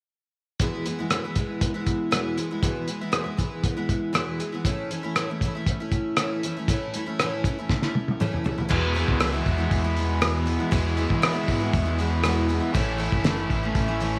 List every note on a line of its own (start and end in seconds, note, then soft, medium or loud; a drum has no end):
0.59 0.86 E2 medium
0.59 0.86 B2 medium
0.59 0.84 E3 medium
0.59 0.85 G#3 medium
0.59 0.86 B3 medium
0.59 0.86 E4 medium
0.59 kick medium
0.59 closed hi-hat medium
0.85 0.98 E3 soft
0.85 0.99 G#3 medium
0.85 0.99 B3 medium
0.85 0.97 E4 medium
0.85 closed hi-hat soft
0.99 1.10 E3 soft
0.99 1.10 G#3 soft
0.99 1.11 B3 soft
0.99 1.11 E4 soft
1.10 1.23 E2 medium
1.10 1.24 B2 medium
1.10 1.24 E3 medium
1.10 1.24 G#3 medium
1.10 1.24 B3 medium
1.10 1.23 E4 medium
1.10 cross-stick medium
1.10 closed hi-hat medium
1.24 1.35 E3 soft
1.24 1.36 G#3 soft
1.24 1.37 B3 soft
1.24 1.36 E4 soft
1.35 1.74 E3 soft
1.35 1.74 G#3 medium
1.35 1.74 B3 medium
1.35 1.73 E4 medium
1.35 kick medium
1.35 closed hi-hat medium
1.61 kick medium
1.61 closed hi-hat medium
1.74 2.11 E3 soft
1.74 2.11 G#3 soft
1.74 2.12 B3 soft
1.74 2.12 E4 soft
1.86 kick medium
1.86 closed hi-hat medium
2.11 2.37 E2 medium
2.11 2.37 B2 medium
2.11 2.36 E3 medium
2.11 2.37 G#3 medium
2.11 2.37 B3 medium
2.11 2.38 E4 medium
2.11 cross-stick medium
2.11 closed hi-hat medium
2.37 2.50 E3 medium
2.37 2.50 G#3 medium
2.37 2.50 B3 medium
2.37 2.49 E4 medium
2.37 closed hi-hat medium
2.51 2.62 E3 soft
2.51 2.62 G#3 soft
2.51 2.63 B3 soft
2.51 2.63 E4 soft
2.62 2.88 E2 medium
2.62 2.89 B2 medium
2.62 2.87 E3 medium
2.62 2.88 G#3 medium
2.62 2.88 B3 medium
2.62 2.89 E4 medium
2.62 kick loud
2.62 closed hi-hat medium
2.88 3.01 E3 medium
2.88 3.01 G#3 medium
2.88 3.01 B3 medium
2.88 3.00 E4 medium
2.88 closed hi-hat medium
3.01 3.11 E3 soft
3.01 3.11 G#3 soft
3.01 3.12 B3 soft
3.01 3.12 E4 medium
3.12 3.25 E2 medium
3.12 3.26 B2 medium
3.12 3.25 E3 medium
3.12 3.24 G#3 medium
3.12 3.24 B3 medium
3.12 3.22 E4 medium
3.12 cross-stick medium
3.12 closed hi-hat medium
3.24 3.36 E3 soft
3.24 3.37 G#3 soft
3.24 3.38 B3 soft
3.24 3.38 E4 soft
3.37 3.76 E3 medium
3.37 3.77 G#3 medium
3.37 3.76 B3 medium
3.37 3.75 E4 medium
3.37 kick medium
3.37 closed hi-hat soft
3.64 kick medium
3.64 closed hi-hat medium
3.77 4.13 E3 soft
3.77 4.13 G#3 soft
3.77 4.13 B3 soft
3.77 4.14 E4 medium
3.89 kick medium
3.89 closed hi-hat soft
4.13 4.39 E2 medium
4.13 4.40 B2 medium
4.13 4.38 E3 medium
4.13 4.39 G#3 medium
4.13 4.39 B3 medium
4.13 4.40 E4 medium
4.13 cross-stick medium
4.13 closed hi-hat medium
4.40 4.53 E3 medium
4.40 4.53 G#3 medium
4.40 4.53 B3 medium
4.40 4.51 E4 medium
4.40 closed hi-hat soft
4.52 4.65 E3 soft
4.52 4.66 G#3 soft
4.52 4.66 B3 soft
4.52 4.65 E4 soft
4.65 4.91 A2 medium
4.65 4.90 E3 medium
4.65 4.91 A3 medium
4.65 4.91 C#4 medium
4.65 4.92 E4 medium
4.65 kick medium
4.65 closed hi-hat medium
4.91 5.03 E3 soft
4.91 5.04 A3 medium
4.91 5.03 C#4 medium
4.91 5.02 E4 medium
4.91 closed hi-hat soft
5.03 5.15 A3 soft
5.03 5.16 C#4 soft
5.03 5.16 E4 medium
5.16 5.29 A2 medium
5.16 5.29 E3 medium
5.16 5.29 A3 medium
5.16 5.29 C#4 medium
5.16 5.29 E4 medium
5.16 cross-stick medium
5.16 closed hi-hat medium
5.30 5.43 A3 soft
5.30 5.42 C#4 soft
5.30 5.42 E4 soft
5.41 5.55 E3 medium
5.41 5.56 A3 medium
5.41 5.55 C#4 medium
5.41 kick medium
5.41 closed hi-hat soft
5.45 5.54 E4 medium
5.55 5.81 A3 soft
5.55 5.80 C#4 soft
5.55 5.79 E4 soft
5.66 kick medium
5.66 closed hi-hat medium
5.80 6.17 A3 soft
5.80 6.17 C#4 soft
5.80 6.18 E4 medium
5.92 kick medium
5.92 closed hi-hat medium
6.17 6.43 A2 medium
6.17 6.43 E3 medium
6.17 6.43 A3 medium
6.17 6.43 C#4 medium
6.17 6.43 E4 medium
6.17 cross-stick medium
6.17 closed hi-hat medium
6.43 6.56 E3 medium
6.43 6.56 A3 medium
6.43 6.56 C#4 medium
6.43 6.55 E4 medium
6.43 closed hi-hat medium
6.57 6.69 A3 soft
6.57 6.69 C#4 soft
6.57 6.69 E4 soft
6.68 6.94 A2 medium
6.68 6.93 E3 medium
6.68 6.94 A3 medium
6.68 6.94 C#4 medium
6.68 6.95 E4 medium
6.68 kick medium
6.68 closed hi-hat medium
6.94 7.06 E3 soft
6.94 7.07 A3 medium
6.94 7.06 C#4 medium
6.94 7.05 E4 medium
6.94 closed hi-hat medium
7.06 7.19 A3 soft
7.06 7.19 C#4 soft
7.06 7.19 E4 soft
7.19 7.45 A2 medium
7.19 7.45 E3 medium
7.19 7.45 A3 medium
7.19 7.46 C#4 medium
7.19 7.46 E4 medium
7.19 cross-stick medium
7.19 closed hi-hat medium
7.44 7.58 E3 medium
7.44 7.58 A3 medium
7.44 7.58 C#4 medium
7.44 7.57 E4 medium
7.44 kick medium
7.44 closed hi-hat medium
7.58 7.83 A3 soft
7.58 7.82 C#4 soft
7.58 7.82 E4 soft
7.69 kick medium
7.69 snare soft
7.82 8.20 A3 soft
7.82 8.20 C#4 soft
7.82 8.20 E4 soft
7.82 snare soft
7.95 high tom medium
8.08 high tom medium
8.20 8.45 A2 medium
8.20 8.43 E3 medium
8.20 8.44 A3 medium
8.20 8.44 C#4 medium
8.20 8.44 E4 medium
8.20 mid tom medium
8.34 mid tom medium
8.44 8.57 E3 soft
8.44 8.58 A3 soft
8.44 8.58 C#4 medium
8.44 8.56 E4 medium
8.44 floor tom medium
8.58 8.69 A3 soft
8.58 8.69 C#4 soft
8.58 8.68 E4 soft
8.58 floor tom medium
8.69 8.95 E2 medium
8.69 9.02 E2 medium
8.69 8.95 B2 medium
8.69 8.93 E3 medium
8.69 8.94 G#3 medium
8.69 8.94 B3 medium
8.69 8.94 E4 medium
8.69 kick medium
8.69 crash medium
8.74 10.74 E4 medium
8.94 9.19 E3 medium
8.94 9.20 G#3 medium
8.94 9.20 B3 medium
8.94 9.21 E4 medium
8.94 open hi-hat soft
9.08 9.40 C#2 medium
9.08 kick medium
9.20 9.33 E2 medium
9.20 9.33 B2 medium
9.20 9.33 E3 medium
9.20 9.34 G#3 medium
9.20 9.33 B3 medium
9.20 9.32 E4 medium
9.20 cross-stick loud
9.20 open hi-hat medium
9.33 9.59 E3 soft
9.33 9.59 G#3 soft
9.33 9.57 B3 soft
9.33 9.56 E4 soft
9.46 9.67 E2 medium
9.46 kick medium
9.46 open hi-hat soft
9.58 9.84 E3 soft
9.58 9.84 G#3 soft
9.58 9.83 B3 soft
9.58 9.83 E4 soft
9.71 10.57 E2 medium
9.71 kick medium
9.71 open hi-hat medium
9.84 9.96 E3 soft
9.84 9.97 G#3 soft
9.84 9.97 B3 soft
9.84 9.97 E4 medium
9.96 10.20 E3 medium
9.96 10.21 G#3 medium
9.96 10.21 B3 medium
9.96 10.22 E4 medium
9.96 open hi-hat soft
10.21 10.47 E2 medium
10.21 10.47 B2 medium
10.21 10.44 E3 medium
10.21 10.46 G#3 medium
10.21 10.46 B3 medium
10.21 10.47 E4 medium
10.21 cross-stick loud
10.21 open hi-hat medium
10.46 10.59 E3 medium
10.46 10.59 G#3 medium
10.46 10.59 B3 medium
10.46 10.57 E4 medium
10.46 open hi-hat soft
10.58 10.71 E3 soft
10.58 10.71 G#3 soft
10.58 10.72 B3 soft
10.58 10.72 E4 soft
10.71 10.97 E2 medium
10.71 11.04 E2 medium
10.71 10.98 B2 medium
10.71 10.95 E3 medium
10.71 10.96 G#3 medium
10.71 10.97 B3 medium
10.71 10.97 E4 medium
10.71 kick loud
10.71 open hi-hat medium
10.96 11.21 E3 medium
10.96 11.22 G#3 medium
10.96 11.23 B3 medium
10.96 11.22 E4 medium
10.96 open hi-hat soft
11.10 11.42 E3 medium
11.10 kick medium
11.22 11.35 E2 medium
11.22 11.35 B2 medium
11.22 11.35 E3 medium
11.22 11.33 G#3 medium
11.22 11.33 B3 medium
11.22 11.32 E4 medium
11.22 cross-stick loud
11.22 open hi-hat medium
11.33 11.61 E3 soft
11.33 11.60 G#3 soft
11.33 11.59 B3 medium
11.33 11.59 E4 medium
11.48 11.70 G#2 medium
11.48 kick medium
11.48 open hi-hat soft
11.60 11.87 E3 soft
11.60 11.85 G#3 soft
11.60 11.85 B3 soft
11.60 11.84 E4 soft
11.73 12.59 E2 medium
11.73 kick medium
11.73 open hi-hat medium
11.85 11.99 E3 soft
11.85 11.98 G#3 soft
11.85 11.99 B3 medium
11.85 11.98 E4 medium
11.99 12.24 E3 medium
11.99 12.24 G#3 medium
11.99 12.24 B3 medium
11.99 12.24 E4 medium
11.99 open hi-hat soft
12.23 12.50 E2 medium
12.23 12.50 B2 medium
12.23 12.47 E3 medium
12.23 12.48 G#3 medium
12.23 12.48 B3 medium
12.23 12.49 E4 medium
12.23 cross-stick medium
12.23 open hi-hat medium
12.48 12.61 E3 medium
12.48 12.61 G#3 medium
12.48 12.60 B3 medium
12.48 12.59 E4 medium
12.48 open hi-hat soft
12.60 12.74 E3 soft
12.60 12.75 G#3 soft
12.60 12.74 B3 soft
12.60 12.74 E4 soft
12.74 13.07 A1 medium
12.74 13.00 A2 medium
12.74 12.97 E3 medium
12.74 12.98 A3 medium
12.74 12.98 C#4 medium
12.74 12.99 E4 medium
12.74 kick loud
12.74 open hi-hat medium
12.98 13.23 E3 medium
12.98 13.23 A3 medium
12.98 13.24 C#4 medium
12.98 13.24 E4 medium
12.98 open hi-hat soft
13.12 13.44 F#1 medium
13.12 kick medium
13.24 13.37 A2 medium
13.24 13.37 E3 medium
13.24 13.37 A3 medium
13.24 13.37 C#4 medium
13.24 13.36 E4 medium
13.24 snare loud
13.24 open hi-hat medium
13.37 13.64 A3 soft
13.37 13.63 C#4 soft
13.37 13.62 E4 soft
13.50 13.72 A1 medium
13.50 kick medium
13.50 open hi-hat soft
13.63 13.89 A3 soft
13.63 13.87 C#4 soft
13.63 13.87 E4 medium
13.75 14.19 A1 medium
13.75 kick medium
13.75 open hi-hat medium
13.88 14.00 A3 soft
13.88 14.00 C#4 soft
13.88 14.01 E4 medium
14.00 14.19 E3 medium
14.00 14.19 A3 medium
14.00 14.19 C#4 medium
14.00 14.19 E4 medium
14.00 open hi-hat soft